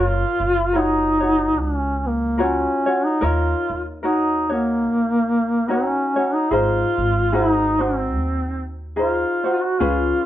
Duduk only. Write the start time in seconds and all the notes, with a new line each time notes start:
Already playing: F4
0.78 D#4
1.59 D4
1.76 C#4
2.07 A#3
2.42 C#4
3.06 D#4
3.24 F4
4.06 D#4
4.53 A#3
5.71 C#4
6.35 D#4
6.53 F4
7.34 E4
7.52 D#4
7.82 C4
8.99 F4
9.62 F#4
9.80 F4